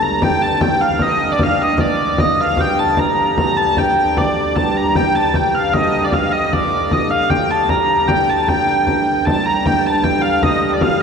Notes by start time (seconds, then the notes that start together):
Already playing: G2 D3
0.02 A#5, frame drum
0.22 G5, frame drum
0.42 A5, frame drum
0.61 G5, frame drum
0.81 F5
0.99 D#5, frame drum
1.20 frame drum
1.32 D5
1.39 F5, frame drum
1.59 D#5, frame drum
1.78 D5, frame drum
2.18 D#5, frame drum
2.39 F5, frame drum
2.57 G5, frame drum
2.78 A5, frame drum
2.97 A#5, frame drum
3.38 A#5, frame drum
3.57 A5, frame drum
3.77 G5, frame drum
3.97 frame drum
4.17 D5, frame drum
4.56 G2 D3 A5, frame drum
4.77 A#5, frame drum
4.95 G5, frame drum
5.15 A5, frame drum
5.34 G5, frame drum
5.54 F5
5.73 D#5, frame drum
5.94 frame drum
6.04 D5
6.12 F5, frame drum
6.32 D#5, frame drum
6.52 D5, frame drum
6.91 D#5, frame drum
7.10 F5, frame drum
7.29 G5, frame drum
7.50 A5, frame drum
7.69 A#5, frame drum
8.08 G5, frame drum
8.29 A5
8.48 G5, frame drum
8.86 G5, frame drum
9.07 frame drum
9.25 G2 D3 A5, frame drum
9.45 A#5, frame drum
9.65 G5, frame drum
9.85 A5, frame drum
10.03 G5, frame drum
10.21 F5
10.43 D#5, frame drum
10.68 D#5
10.73 D5
10.81 F5, frame drum